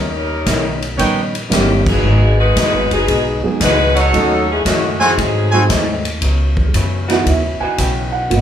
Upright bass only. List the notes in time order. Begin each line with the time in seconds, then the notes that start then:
Already playing: D#2
0.47 B1
0.99 A#1
1.51 G1
2.03 G#1
2.56 A#1
2.73 G#1
2.91 F#1
3.08 B1
3.44 muted upright bass stroke
3.60 C#2
4.13 D#2
4.65 F#2
5.18 G#2
5.70 D#2
6.21 C#2
6.74 F#2
7.26 D#2
7.60 muted upright bass stroke
7.78 B1
8.31 G#1